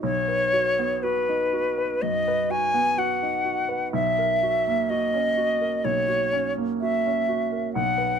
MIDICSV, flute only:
0, 0, Header, 1, 2, 480
1, 0, Start_track
1, 0, Tempo, 993377
1, 14, Time_signature, 4, 2, 24, 8
1, 974, Tempo, 956938
1, 3374, Tempo, 934579
1, 4090, End_track
2, 0, Start_track
2, 0, Title_t, "Flute"
2, 0, Program_c, 0, 73
2, 15, Note_on_c, 0, 73, 92
2, 498, Note_on_c, 0, 71, 75
2, 505, Note_off_c, 0, 73, 0
2, 975, Note_on_c, 0, 75, 90
2, 983, Note_off_c, 0, 71, 0
2, 1220, Note_on_c, 0, 80, 88
2, 1228, Note_off_c, 0, 75, 0
2, 1460, Note_on_c, 0, 78, 76
2, 1467, Note_off_c, 0, 80, 0
2, 1930, Note_off_c, 0, 78, 0
2, 1933, Note_on_c, 0, 76, 85
2, 2419, Note_on_c, 0, 75, 89
2, 2426, Note_off_c, 0, 76, 0
2, 2895, Note_on_c, 0, 73, 80
2, 2902, Note_off_c, 0, 75, 0
2, 3239, Note_off_c, 0, 73, 0
2, 3378, Note_on_c, 0, 76, 76
2, 3837, Note_off_c, 0, 76, 0
2, 3855, Note_on_c, 0, 78, 77
2, 4090, Note_off_c, 0, 78, 0
2, 4090, End_track
0, 0, End_of_file